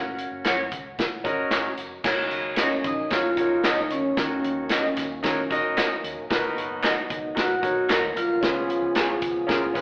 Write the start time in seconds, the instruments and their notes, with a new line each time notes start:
Already playing: fingered electric bass F#1, grand piano C#4 F#4 A#4 C#5, vibraphone F#5
0.18 closed hi-hat, tambourine
0.31 fingered electric bass F#1
0.44 fingered electric bass F#2, clean electric guitar C#4 F#4 A#4 C#5, snare, clap, closed hi-hat, tambourine
0.71 fingered electric bass C#2, kick, closed hi-hat, tambourine
0.98 fingered electric bass A#1, kick, snare, closed hi-hat, tambourine
1.24 fingered electric bass G#1, grand piano C#4 F#4 A#4 D#5, kick, closed hi-hat, tambourine
1.51 fingered electric bass F#1, clean electric guitar C#4 F#4 A#4 C#5, snare, clap, closed hi-hat, tambourine
1.77 fingered electric bass F1, closed hi-hat, tambourine
2.04 fingered electric bass F#1, tonewheel organ D#3 F#3 A#3 C#4, grand piano D#4 F#4 A#4 C#5, kick, snare, crash, tambourine
2.31 fingered electric bass C#2, closed hi-hat, tambourine
2.56 clean electric guitar C#4 F#4 A#4 D#5, snare, clap, closed hi-hat, tambourine
2.61 vibraphone C#4 C#5
2.72 muted fingered electric bass stroke
2.84 fingered electric bass A#1, vibraphone D#4 D#5, kick, closed hi-hat, tambourine
3.10 fingered electric bass G#1, grand piano D#4 F#4 A#4 C#5, vibraphone F4 F5, kick, snare, closed hi-hat, tambourine
3.37 fingered electric bass F#1, grand piano D#4 F#4 A#4 C#5, kick, closed hi-hat, tambourine
3.64 fingered electric bass C#2, clean electric guitar C#4 F#4 A#4 D#5, vibraphone D#4 D#5, snare, clap, closed hi-hat, tambourine
3.90 fingered electric bass D2, vibraphone C#4 C#5, closed hi-hat, tambourine
4.17 fingered electric bass D#2, grand piano D#3 D#4 F#4 A#4 C#5, kick, snare, closed hi-hat, tambourine
4.44 fingered electric bass D#2, closed hi-hat
4.69 clean electric guitar C#4 F#4 A#4 D#5, snare, clap, closed hi-hat, tambourine
4.84 muted fingered electric bass stroke
4.97 fingered electric bass D#2, kick, snare, closed hi-hat, tambourine
5.23 fingered electric bass D#3, grand piano D#4 F#4 A#4 C#5, kick, snare, closed hi-hat, tambourine
5.50 fingered electric bass A#1, grand piano D#4 F#4 A#4 D#5, kick, closed hi-hat, tambourine
5.77 clean electric guitar C#4 F#4 A#4 D#5, snare, clap, closed hi-hat, tambourine
6.04 fingered electric bass D#2, closed hi-hat, tambourine
6.18 fingered electric bass A#1
6.30 fingered electric bass B1, grand piano B2 D#4 F#4 A#4 B4, tonewheel organ B3, kick, snare, closed hi-hat, tambourine
6.57 fingered electric bass F#1, closed hi-hat, tambourine
6.83 clean electric guitar D#4 F#4 A#4 D#5, vibraphone D#4 D#5, snare, clap, closed hi-hat, tambourine
6.97 muted fingered electric bass stroke
7.10 fingered electric bass C#2, kick, closed hi-hat, tambourine
7.35 fingered electric bass B1, grand piano D#4 F#4 A#4 B4, vibraphone F#4 F#5, kick, snare, closed hi-hat, tambourine
7.62 fingered electric bass A#1, grand piano D#4 F#4 A#4 C#5, kick, closed hi-hat, tambourine
7.89 fingered electric bass D#2, clean electric guitar D#4 F#4 A#4 D#5, vibraphone A#4 A#5, snare, clap, closed hi-hat, tambourine
8.16 fingered electric bass C2, vibraphone F4 F5, closed hi-hat, tambourine
8.41 fingered electric bass C#2, grand piano C#3 C#4 F4 G#4 B4, tonewheel organ F3 C#4 G#4, kick, snare, closed hi-hat, tambourine
8.69 closed hi-hat, tambourine
8.82 fingered electric bass C#2
8.95 clean electric guitar B3 F4 G#4 C#5, snare, clap, closed hi-hat, tambourine
9.10 muted fingered electric bass stroke
9.22 fingered electric bass C#2, kick, closed hi-hat, tambourine
9.47 fingered electric bass C#3, grand piano C#4 F4 G#4 A#4, kick, snare, closed hi-hat, tambourine
9.74 fingered electric bass G#1, grand piano C#4 F4 G#4 B4, kick, closed hi-hat, tambourine